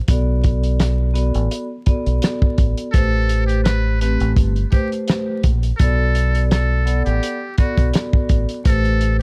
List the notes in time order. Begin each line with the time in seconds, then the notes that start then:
0.08 B1 B3 F#4 A4 D5, kick, closed hi-hat
0.44 kick, closed hi-hat
0.63 closed hi-hat
0.80 cross-stick, snare, closed hi-hat
1.14 B3 F#4 A4 D5, closed hi-hat
1.34 A1, closed hi-hat
1.51 closed hi-hat
1.86 B3 F#4 A4 D5, kick, closed hi-hat
2.06 B1, closed hi-hat
2.22 cross-stick, snare, closed hi-hat
2.42 kick
2.58 A1, kick, closed hi-hat
2.77 closed hi-hat
2.92 A1 A3 G4 A4 B4 C5, kick, closed hi-hat
3.29 closed hi-hat
3.47 G4, closed hi-hat
3.64 B4, cross-stick, snare, closed hi-hat
4.01 A3 C4 G4 B4, closed hi-hat
4.20 A1, closed hi-hat
4.36 G1, kick, closed hi-hat
4.56 closed hi-hat
4.71 A3 G4 B4 C5, kick, closed hi-hat
4.92 closed hi-hat
5.08 cross-stick, snare, closed hi-hat
5.43 A#1, kick, closed hi-hat
5.63 closed hi-hat
5.77 B1 B3 F#4 A4, kick, closed hi-hat
5.81 D5
6.15 closed hi-hat
6.35 closed hi-hat
6.51 A4, cross-stick, snare, closed hi-hat
6.85 B3 A4 D5 F#5, closed hi-hat
7.05 A1 G4, closed hi-hat
7.23 closed hi-hat
7.58 B3 F#4 A4 D5, kick, closed hi-hat
7.77 B1, kick, closed hi-hat
7.93 cross-stick, snare, closed hi-hat
8.13 kick
8.29 A1, kick, closed hi-hat
8.49 closed hi-hat
8.64 A1 A3 G4 A4 B4 C5, kick, closed hi-hat
8.85 closed hi-hat
9.01 closed hi-hat